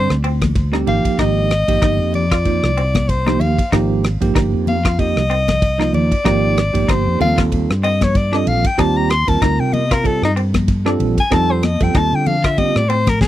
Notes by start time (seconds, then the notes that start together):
Already playing: D3 G3 C4 D4 C5
0.10 D2, cross-stick
0.23 C4 F4, ride
0.42 kick, cross-stick, ride, high conga, low conga
0.56 kick, ride
0.72 D3 G3 C4 D#4 G4, cross-stick
0.87 G#1 F3 A#3 D#4 G4 F5, ride, low conga
1.05 kick, ride
1.19 G#1 D#4 D#5, kick, cross-stick, ride
1.51 cross-stick, ride
1.68 G#1 F3 A#3 D#4 G4, kick, ride
1.82 G1 D#4, kick, cross-stick, ride
1.99 F2
2.14 D5, ride, low conga
2.31 F4, kick, cross-stick, ride
2.45 F3 A#3 D#4 F4, kick, ride
2.63 C2, cross-stick
2.76 C4 D#4 F4, ride
2.95 kick, cross-stick, ride, high conga, low conga
3.09 C5, kick, ride
3.26 F3 A#3 D#4 G4, cross-stick, high conga
3.40 D#2 F5, ride, low conga
3.58 kick, ride
3.72 G#1 F3 A#3 D#4 G4, kick, cross-stick, ride
4.04 cross-stick, ride
4.21 G#1 F3 A#3 D#4 G4, kick, ride
4.35 G1 D#4, kick, cross-stick, ride
4.53 F2
4.67 F5, ride, high conga, low conga
4.85 F4, kick, cross-stick, ride
4.98 F3 A#3 D#4 G4 D#5, kick, ride
5.16 C2, cross-stick
5.30 C4 D#4 A#4, ride
5.48 kick, cross-stick, ride, high conga, low conga
5.62 kick, ride
5.79 F3 A#3 D#4 F4, cross-stick
5.93 D#2 D5, ride, low conga
6.12 muted fretless electric bass stroke, kick, ride
6.25 G#1 F3 A#3 D#4 G4, kick, cross-stick, ride
6.57 cross-stick, ride
6.73 G#1 F3 A#3 D#4 G4, kick, ride
6.88 G1 D#4 C5, kick, cross-stick, ride
7.06 F2
7.20 D#2 G3 C4 F4 A4 F5, ride, high conga, low conga
7.38 F4, kick, cross-stick, ride
7.52 kick, ride
7.70 G2, cross-stick
7.83 C4 F4 A4 D#5, ride
8.01 C#5, kick, cross-stick, ride, high conga, low conga
8.15 D5, kick, ride
8.32 G3 C4 D4 F4 A4 D#5, cross-stick
8.47 A#1 F5, ride, low conga
8.65 G5, muted fretless electric bass stroke, kick, ride
8.78 D#2 G3 C4 D#4 F4 G4 A5, kick, cross-stick, ride
8.97 A#5
9.10 C6, cross-stick, ride
9.27 D#2 G3 C4 F4 A#4 A5, kick, ride
9.42 D2 D#4 A#5, kick, cross-stick, ride
9.59 C3 G5
9.73 D#5, ride, high conga, low conga
9.91 F4 A#4, kick, cross-stick, ride
10.04 G3 C4 F4 A4, kick, ride
10.22 G2 D#4, cross-stick
10.35 C4 F4 A#4, ride
10.54 kick, cross-stick, ride, high conga, low conga
10.68 kick, ride
10.85 G3 C4 D4 F4 A4, cross-stick
11.00 A#1, ride, low conga
11.18 G#5, kick, ride
11.31 F2 G3 C4 D#4 F4 A4 A5, kick, cross-stick, ride
11.51 C5
11.63 D#5, cross-stick, ride, high conga
11.80 F2 G3 C4 F4 A4 G5, kick, ride
11.94 D#2 D#4 A5, kick, cross-stick, ride
12.13 D3 G5
12.26 F5, ride, high conga, low conga
12.44 F4 E5, kick, cross-stick, ride
12.58 G3 C4 F4 G4 D#5, kick, ride, high conga
12.76 A2 D5, cross-stick
12.89 C4 F4 C5, ride
13.07 A#4, kick, cross-stick, ride, high conga, low conga
13.21 A4, kick, snare, high conga